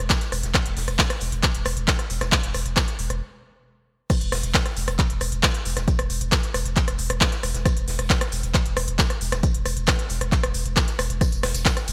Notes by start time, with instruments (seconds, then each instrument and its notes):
0.10 kick, snare, clap, closed hi-hat, shaker
0.21 snare, closed hi-hat
0.32 sub bass E1, cross-stick, open hi-hat, shaker
0.43 sub bass E1, snare, closed hi-hat
0.54 kick, cross-stick, clap, closed hi-hat, shaker
0.66 sub bass E1, closed hi-hat
0.77 sub bass E1, snare, open hi-hat
0.88 sub bass E1, cross-stick, closed hi-hat
0.99 kick, snare, clap, closed hi-hat, shaker
1.10 cross-stick, closed hi-hat
1.21 sub bass E1, open hi-hat, shaker
1.32 sub bass E1, closed hi-hat
1.43 kick, cross-stick, clap, closed hi-hat, shaker
1.54 sub bass E1, closed hi-hat
1.65 sub bass E1, cross-stick, open hi-hat, shaker
1.77 sub bass E1, closed hi-hat
1.87 kick, snare, clap, closed hi-hat, shaker
1.99 cross-stick, closed hi-hat
2.10 sub bass E1, open hi-hat, shaker
2.21 sub bass E1, cross-stick, snare, closed hi-hat
2.32 kick, clap, closed hi-hat, shaker
2.43 sub bass E1, closed hi-hat
2.54 sub bass E1, cross-stick, open hi-hat, shaker
2.66 sub bass E1, closed hi-hat
2.76 kick, cross-stick, snare, clap, closed hi-hat, shaker
2.88 closed hi-hat
2.99 sub bass E1, open hi-hat, shaker
3.10 sub bass E1, cross-stick, closed hi-hat
4.10 kick, cross-stick, closed hi-hat, crash, shaker
4.21 sub bass E1, closed hi-hat
4.32 sub bass E1, cross-stick, snare, open hi-hat
4.43 sub bass E1, closed hi-hat
4.54 kick, snare, clap, closed hi-hat, shaker
4.66 cross-stick, closed hi-hat
4.76 sub bass E1, open hi-hat, shaker
4.87 sub bass E1, cross-stick, closed hi-hat
4.99 kick, clap, closed hi-hat, shaker
5.10 sub bass E1, closed hi-hat
5.21 sub bass E1, cross-stick, open hi-hat, shaker
5.32 sub bass E1, closed hi-hat
5.43 kick, cross-stick, snare, clap, closed hi-hat, shaker
5.54 closed hi-hat
5.65 sub bass E1, open hi-hat, shaker
5.76 sub bass E1, cross-stick, snare, closed hi-hat
5.88 kick, closed hi-hat, shaker
5.99 sub bass E1, cross-stick, closed hi-hat
6.10 sub bass E1, open hi-hat, shaker
6.21 sub bass E1, closed hi-hat
6.32 kick, cross-stick, snare, clap, closed hi-hat, shaker
6.43 closed hi-hat
6.54 sub bass E1, cross-stick, open hi-hat, shaker
6.65 sub bass E1, closed hi-hat
6.76 kick, clap, closed hi-hat, shaker
6.88 sub bass E1, cross-stick, closed hi-hat
6.98 sub bass E1, open hi-hat, shaker
7.10 sub bass E1, cross-stick, closed hi-hat
7.21 kick, snare, clap, closed hi-hat, shaker
7.32 snare, closed hi-hat
7.43 sub bass E1, cross-stick, open hi-hat, shaker
7.54 sub bass E1, snare, closed hi-hat
7.66 kick, cross-stick, closed hi-hat, shaker
7.77 sub bass E1, closed hi-hat
7.88 sub bass E1, snare, open hi-hat
7.99 sub bass E1, cross-stick, closed hi-hat
8.10 kick, snare, clap, closed hi-hat, shaker
8.21 cross-stick, closed hi-hat
8.32 sub bass E1, open hi-hat, shaker
8.43 sub bass E1, closed hi-hat
8.54 kick, cross-stick, clap, closed hi-hat, shaker
8.66 sub bass E1, closed hi-hat
8.77 sub bass E1, cross-stick, open hi-hat, shaker
8.88 sub bass E1, closed hi-hat
8.99 kick, snare, clap, closed hi-hat, shaker
9.10 cross-stick, closed hi-hat
9.21 sub bass E1, open hi-hat, shaker
9.32 sub bass E1, cross-stick, snare, closed hi-hat
9.43 kick, closed hi-hat, shaker
9.54 sub bass E1, closed hi-hat
9.65 sub bass E1, cross-stick, open hi-hat, shaker
9.77 sub bass E1, closed hi-hat
9.87 kick, cross-stick, snare, clap, closed hi-hat, shaker
9.99 closed hi-hat
10.09 sub bass E1, open hi-hat, shaker
10.21 sub bass E1, cross-stick, closed hi-hat
10.32 kick, clap, closed hi-hat, shaker
10.43 sub bass E1, cross-stick, closed hi-hat
10.54 sub bass E1, open hi-hat, shaker
10.66 sub bass E1, closed hi-hat
10.76 kick, cross-stick, snare, clap, closed hi-hat, shaker
10.88 snare, closed hi-hat
10.99 sub bass E1, cross-stick, open hi-hat, shaker
11.10 sub bass E1, closed hi-hat
11.21 kick, cross-stick, closed hi-hat, tambourine, shaker
11.32 sub bass E1, closed hi-hat, tambourine
11.43 sub bass E1, cross-stick, snare, open hi-hat, ride
11.54 sub bass E1, closed hi-hat, tambourine
11.65 kick, snare, clap, closed hi-hat, tambourine, shaker
11.77 cross-stick, closed hi-hat, tambourine
11.88 sub bass E1, open hi-hat, ride, shaker